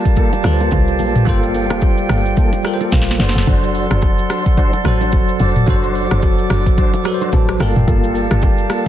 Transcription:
Already playing: tine electric piano G3 F4 A4 A#4, flute section G4 D5 F5 A5
0.05 kick, shaker
0.16 tonewheel organ A#3 F4 A4, kick, low conga, shaker
0.33 low bongo, shaker
0.43 log drum bass D2, tine electric piano G3 F4 A4 B4, cross-stick, open hi-hat, shaker
0.53 tine electric piano C5
0.60 tonewheel organ A#3 F4 A4, low bongo, shaker
0.71 log drum bass C2, kick, high bongo, shaker
0.88 shaker
0.99 log drum bass A#1, tonewheel organ A#3 F4 A4, open hi-hat, low conga, shaker
1.16 mid tom, shaker
1.25 log drum bass G1, tine electric piano G3 F4 A4 C5, tonewheel organ A#3 F4 A4, flute section G5, kick, low conga, shaker
1.43 shaker
1.55 open hi-hat, low bongo, shaker
1.70 log drum bass F1, tonewheel organ A#3 F4 A4, cross-stick, high bongo, low bongo, shaker
1.81 kick, high bongo, shaker
1.98 shaker
2.09 log drum bass G1, tonewheel organ A#3 F4 A4, cross-stick, open hi-hat, shaker
2.26 shaker
2.37 tonewheel organ A#3 F4 A4, kick, low conga, shaker
2.53 low bongo, shaker
2.63 tine electric piano G3 F4 A4 A#4 G5, cross-stick, open hi-hat, shaker
2.74 tine electric piano C5
2.80 tonewheel organ A#3 F4 A4, low bongo, shaker
2.92 log drum bass A#1, tine electric piano F5, kick, snare, high bongo, shaker
3.02 snare
3.08 snare, shaker
3.18 log drum bass F#1, tine electric piano F#3 F#4 A4 B4 D5, tonewheel organ D4 F#4 C5, flute section A4 D5 F#5 C6, snare, open hi-hat, low conga, shaker
3.29 tine electric piano C5, snare
3.35 log drum bass F1, snare, shaker
3.47 log drum bass F#1, tonewheel organ D4 F#4 C5, kick, low conga, shaker
3.63 shaker
3.75 open hi-hat, shaker
3.91 log drum bass F#1, tonewheel organ D4 F#4 C5, cross-stick, high bongo, shaker
4.02 kick, high bongo, shaker
4.18 shaker
4.29 tonewheel organ D4 F#4 C5, cross-stick, open hi-hat, shaker
4.46 kick, shaker
4.57 tonewheel organ D4 F#4 C5, kick, low conga, shaker
4.73 low bongo, shaker
4.84 log drum bass A1, tine electric piano F#3 F#4 A4 C5, cross-stick, open hi-hat, shaker
5.01 tonewheel organ D4 F#4 C5, low bongo, shaker
5.12 log drum bass F#1, kick, high bongo, shaker
5.28 shaker
5.40 log drum bass F1, tonewheel organ D4 F#4 C5, flute section D6, open hi-hat, low conga, shaker
5.56 mid tom, shaker
5.66 log drum bass F#1, tine electric piano F#3 F#4 A4 C5, tonewheel organ D4 F#4 C5, kick, low conga, shaker
5.84 shaker
5.95 open hi-hat, shaker
6.11 log drum bass F#1, tonewheel organ D4 F#4 C5, cross-stick, high bongo, shaker
6.22 kick, high bongo, shaker
6.38 shaker
6.50 log drum bass F#1, tonewheel organ D4 F#4 C5, cross-stick, open hi-hat, shaker
6.66 kick, shaker
6.78 tonewheel organ D4 F#4 C5, kick, low conga, shaker
6.94 low bongo, shaker
7.04 tine electric piano F#3 F#4 A4 B4, cross-stick, open hi-hat, shaker
7.14 tine electric piano C5
7.21 tonewheel organ D4 F#4 C5, low bongo, shaker
7.32 log drum bass A1, tine electric piano A5, kick, high bongo, shaker
7.49 cross-stick, shaker
7.59 log drum bass G1, tine electric piano G3 F4 A4 A#4 G5, tonewheel organ A#3 F4 A4, flute section G4 D5 F5 A5, cross-stick, open hi-hat, low conga, shaker
7.76 log drum bass F1, mid tom, shaker
7.87 log drum bass G1, tonewheel organ A#3 F4 A4, kick, low conga, shaker
8.04 shaker
8.15 open hi-hat, shaker
8.31 log drum bass G1, tonewheel organ A#3 F4 A4, cross-stick, high bongo, shaker
8.42 kick, high bongo, shaker
8.58 shaker
8.70 tonewheel organ A#3 F4 A4, cross-stick, open hi-hat, shaker

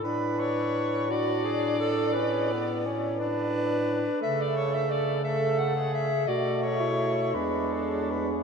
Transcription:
0.02 bass clarinet A2, tenor saxophone D4, soprano saxophone B4, alto saxophone B4
0.40 soprano saxophone C#5
1.10 tenor saxophone D4, alto saxophone F#4, soprano saxophone D5
1.45 alto saxophone G#4
1.80 alto saxophone A4
2.13 tenor saxophone C#4, alto saxophone B4
2.52 tenor saxophone B3
2.86 tenor saxophone C#4
3.16 alto saxophone B4
3.20 tenor saxophone D4
4.20 bass clarinet C#3, tenor saxophone A3, alto saxophone A4, soprano saxophone E5
4.41 soprano saxophone D5
4.56 soprano saxophone C#5
4.74 soprano saxophone E5
4.91 soprano saxophone D5
5.24 tenor saxophone A3, alto saxophone A4, soprano saxophone E5
5.58 soprano saxophone F#5
5.75 alto saxophone G#4
5.94 soprano saxophone E5
6.27 bass clarinet B2, tenor saxophone A3, alto saxophone F#4, soprano saxophone D5
6.62 soprano saxophone C#5
6.81 alto saxophone E4
7.34 bass clarinet E2, tenor saxophone G#3, alto saxophone D4, soprano saxophone B4
7.72 soprano saxophone A4
8.11 soprano saxophone B4
8.31 soprano saxophone G#4

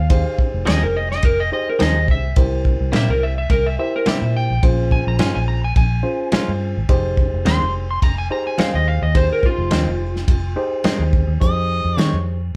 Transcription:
Already playing: fingered electric bass D#2, electric slide guitar F5
0.10 reed electric piano D#4 G4 G#4 C5, kick, ride bell
0.39 kick
0.54 fingered electric bass F1
0.66 fingered electric bass D#2, clean electric guitar F3 C4 D#4 G#4, electric slide guitar D#5, snare, ride bell
0.83 fingered electric bass F1, electric slide guitar A#4
0.97 electric slide guitar D#5
1.11 electric slide guitar D#5, snare
1.23 fingered electric bass F1, electric slide guitar A#4, kick, ride bell
1.40 electric slide guitar D#5
1.52 reed electric piano D#4 G4 G#4 C5, electric slide guitar D#5
1.69 electric slide guitar A#4
1.79 fingered electric bass D#2, clean electric guitar F3 C4 D#4 G#4, electric slide guitar D#5, snare, ride bell
2.08 fingered electric bass C2, electric slide guitar E5, kick
2.36 fingered electric bass C2, reed electric piano E4 G4 A#4 C5, kick, ride bell
2.65 kick
2.81 fingered electric bass C2
2.92 fingered electric bass A#2, clean electric guitar C3 A#3 E4 G4, electric slide guitar E5, snare, ride bell
3.08 fingered electric bass C2, electric slide guitar A#4
3.23 electric slide guitar E5
3.38 electric slide guitar E5
3.50 fingered electric bass C2, electric slide guitar A#4, kick, ride bell
3.66 electric slide guitar E5
3.79 reed electric piano E4 G4 A#4 C5, electric slide guitar E5
3.96 electric slide guitar A#4
4.06 clean electric guitar C3 A#3 E4 G4, electric slide guitar E5, muted fingered electric bass stroke, snare, ride bell
4.21 fingered electric bass A#2
4.37 electric slide guitar G5
4.50 fingered electric bass A#1
4.63 fingered electric bass A#1, reed electric piano C#4 F4 G#4 C5, kick, ride bell
4.91 electric slide guitar G#5, kick
5.07 fingered electric bass A#1, electric slide guitar A#5
5.19 fingered electric bass G2, clean electric guitar A#2 G#3 C#4 F4, electric slide guitar G#5, snare, ride bell
5.35 fingered electric bass A#1, electric slide guitar G#5
5.48 electric slide guitar A#5
5.64 electric slide guitar G#5
5.76 fingered electric bass A#1, electric slide guitar G#5, kick, ride bell
6.03 reed electric piano C#4 F4 G#4 C5
6.32 clean electric guitar A#2 G#3 C#4 F4, muted fingered electric bass stroke, snare, ride bell
6.48 fingered electric bass G2
6.77 fingered electric bass G#1
6.89 fingered electric bass F1, reed electric piano D#4 G4 G#4 C5, kick, ride bell
7.17 kick
7.33 fingered electric bass F1
7.45 fingered electric bass D#2, clean electric guitar F2 D#3 G#3 C4, electric slide guitar C6, snare, ride bell
7.61 fingered electric bass F1
7.91 electric slide guitar C6
8.02 fingered electric bass F1, electric slide guitar A#5, kick, ride bell
8.18 electric slide guitar G#5
8.30 reed electric piano D#4 G4 G#4 C5, electric slide guitar A#5
8.47 electric slide guitar G#5
8.58 clean electric guitar F2 D#3 G#3 C4, electric slide guitar F5, muted fingered electric bass stroke, snare, ride bell
8.74 fingered electric bass D#2, electric slide guitar D#5
8.88 electric slide guitar F5
9.02 fingered electric bass D#2, electric slide guitar D#5
9.15 reed electric piano D#4 G4 G#4 C5, electric slide guitar C5, kick, ride bell
9.33 electric slide guitar A#4
9.43 electric slide guitar F4, kick
9.58 fingered electric bass F1
9.71 fingered electric bass D#2, clean electric guitar F2 D#3 G#3 C4, snare, ride bell
9.86 fingered electric bass F1
10.16 snare
10.28 fingered electric bass F1, kick, ride bell
10.56 reed electric piano D#4 G4 G#4 C5
10.84 clean electric guitar F2 D#3 G#3 C4, muted fingered electric bass stroke, snare, ride bell
10.99 fingered electric bass D#2
11.13 kick
11.27 fingered electric bass D#2
11.41 fingered electric bass F2, reed electric piano D#4 G4 G#4 C5, harmonica D#5, kick, closed hi-hat
11.84 fingered electric bass F2
11.97 clean electric guitar F2 D#3 G#3 C4, fingered electric bass D#3, harmonica C#5, snare, closed hi-hat
12.13 fingered electric bass F2

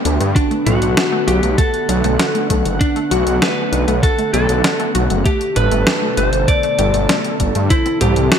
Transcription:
Already playing: analog synth pad D3 A3 B3 G4
0.05 detuned saw bass D2, synth arpeggio sound D4, closed hi-hat
0.20 detuned saw bass G2, synth arpeggio sound A3, closed hi-hat
0.36 analog synth pad D3 F#5, lead electric guitar D4, synth arpeggio sound F#4, kick, closed hi-hat
0.51 synth arpeggio sound A3, closed hi-hat
0.66 detuned saw bass B1, synth arpeggio sound A3, lead electric guitar F#4, closed hi-hat, mid tom
0.82 detuned saw bass B1, closed hi-hat
0.97 synth arpeggio sound D4, snare, closed hi-hat
1.12 synth arpeggio sound A3
1.27 detuned saw bass B1, synth arpeggio sound F#4, lead electric guitar G4, closed hi-hat
1.43 detuned saw bass B1, synth arpeggio sound A3, closed hi-hat
1.58 synth arpeggio sound A3, lead electric guitar A4, kick, closed hi-hat
1.74 closed hi-hat
1.89 detuned saw bass B1, synth arpeggio sound D4, closed hi-hat
2.04 detuned saw bass B1, synth arpeggio sound A3, closed hi-hat
2.19 synth arpeggio sound F#4, snare, closed hi-hat
2.35 synth arpeggio sound A3, closed hi-hat
2.50 detuned saw bass B1, synth arpeggio sound A3, kick, closed hi-hat
2.65 detuned saw bass F#1, closed hi-hat
2.81 synth arpeggio sound D4, lead electric guitar D4, kick, closed hi-hat
2.96 synth arpeggio sound A3, closed hi-hat
3.11 detuned saw bass B1, synth arpeggio sound F#4, lead electric guitar F#4, closed hi-hat
3.26 detuned saw bass B1, synth arpeggio sound A3, closed hi-hat
3.42 synth arpeggio sound A3, lead electric guitar B4, snare, closed hi-hat
3.72 detuned saw bass B1, synth arpeggio sound D4, closed hi-hat
3.88 detuned saw bass B1, synth arpeggio sound A3, closed hi-hat
4.03 synth arpeggio sound F#4, lead electric guitar A4, kick, closed hi-hat
4.18 synth arpeggio sound A3, closed hi-hat
4.33 detuned saw bass B1, synth arpeggio sound A3, lead electric guitar A4, closed hi-hat
4.49 detuned saw bass B1, closed hi-hat
4.64 synth arpeggio sound D4, snare, closed hi-hat
4.80 synth arpeggio sound A3, closed hi-hat
4.95 detuned saw bass B1, synth arpeggio sound F#4, closed hi-hat
5.10 detuned saw bass F#1, synth arpeggio sound A3, closed hi-hat
5.25 analog synth pad B2 D3 A4, synth arpeggio sound A3, lead electric guitar G4, kick, closed hi-hat
5.41 closed hi-hat
5.56 detuned saw bass G1, synth arpeggio sound D4, lead electric guitar B4, closed hi-hat, mid tom
5.71 detuned saw bass G1, synth arpeggio sound A3, closed hi-hat
5.87 synth arpeggio sound G4, snare, closed hi-hat
6.02 synth arpeggio sound A3
6.17 detuned saw bass G1, synth arpeggio sound A3, lead electric guitar C5, closed hi-hat
6.33 detuned saw bass G1, closed hi-hat
6.48 synth arpeggio sound D4, lead electric guitar D5, kick, closed hi-hat
6.63 synth arpeggio sound A3, closed hi-hat
6.79 detuned saw bass G1, synth arpeggio sound G4, closed hi-hat
6.94 detuned saw bass G1, synth arpeggio sound A3, closed hi-hat
7.09 synth arpeggio sound A3, snare, closed hi-hat
7.25 closed hi-hat
7.40 detuned saw bass G1, synth arpeggio sound D4, kick, closed hi-hat
7.55 detuned saw bass G2, synth arpeggio sound A3, closed hi-hat
7.70 analog synth pad E3 G3 C4, lead electric guitar E4, synth arpeggio sound C5, kick, closed hi-hat
7.86 synth arpeggio sound C4, closed hi-hat
8.01 detuned saw bass C2, synth arpeggio sound C4, lead electric guitar G4, closed hi-hat, mid tom
8.16 detuned saw bass C2, closed hi-hat
8.32 lead electric guitar F#4, synth arpeggio sound G4, snare, closed hi-hat

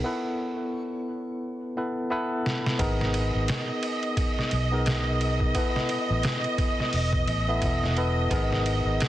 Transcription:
0.04 tine electric piano B3 E4 A4 B4
1.77 tine electric piano B3 E4 A4 B4
2.10 tine electric piano B3 E4 A4 B4
2.46 snare
2.66 snare
2.79 fingered electric bass G#1, tine electric piano B3 D#4 G#4 A#4, string section D#5, kick, ride
3.01 snare
3.14 ride
3.35 fingered electric bass G#1
3.48 snare, ride
3.83 ride
4.03 ride
4.17 kick, ride
4.39 snare
4.51 fingered electric bass B1, ride
4.72 tine electric piano B3 D#4 G#4 A#4
4.86 snare, ride
5.21 ride
5.40 kick
5.55 tine electric piano B3 E4 A4 B4, kick, ride
5.76 snare
5.89 ride
6.10 fingered electric bass A1
6.23 snare, ride
6.44 ride
6.58 kick, ride
6.80 snare
6.93 fingered electric bass E1, open hi-hat
7.13 kick
7.27 fingered electric bass A1, ride
7.49 tine electric piano B3 E4 A4 E5
7.62 fingered electric bass E1, kick, ride
7.84 snare
7.97 tine electric piano B3 E4 A4 B4, ride
8.31 fingered electric bass G#1, tine electric piano B3 D#4 G#4 A#4, kick, ride
8.52 snare
8.66 ride
8.85 fingered electric bass G#1
9.00 snare, ride

